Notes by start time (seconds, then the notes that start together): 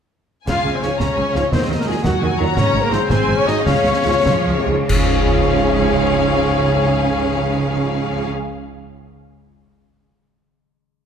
0.47 C#2 C#3 F4 F5 G#5, concert bass drum, snare, crash
0.65 C#2 C#3 C#4
0.74 C4 C5
0.82 C#2 G#2 C#3 F3 G#3 C#4 C#5, snare
0.99 C#2 C#3 C#4 F4 C#5 A#5, concert bass drum, snare
1.17 C#2 C#3 G#5
1.34 C#2 G#2 C#3 F3 G#3 F5, snare
1.52 D#2 D#3 C4 C5 D#5, concert bass drum, snare
1.69 D#2 D#3
1.78 A#3 A#4
1.86 D#2 A#2 D#3 F#3 G#3 G#4
2.03 D#2 D#3 F#3 F#4 F#5, concert bass drum, snare
2.21 D#2 D#3 G#5
2.38 D#2 A#2 D#3 F#3 A#5
2.56 G#1 G#2 C#4 C#5, concert bass drum, snare
2.73 G#1 G#2 G#3
2.83 A#3 A#4
2.90 G#1 G#2 F3 C4 F4 G#4 C5, snare
3.09 G#1 G#2 C4 C5 G#5, concert bass drum, snare
3.27 G#1 G#2 G#3
3.36 C#4 C#5
3.45 G#1 G#2 F#3 D#4 G#4 D#5, snare
3.64 C#2 C#3 C#4 C#5 F5, concert bass drum, snare
3.85 C#2 C#3
4.04 C#2 G#2 C#3 F3 G#3
4.25 C#2 F3 F4, concert bass drum, snare
4.46 C#2 G#4
4.58 C3
4.67 C#2 G#2 C#3 F3 G#3
4.89 C#2 G#2 C#3 F3 C#4 G#4 C#5 F5, concert bass drum, crash
4.97 G#3
5.11 F4
5.18 G#4
5.25 F5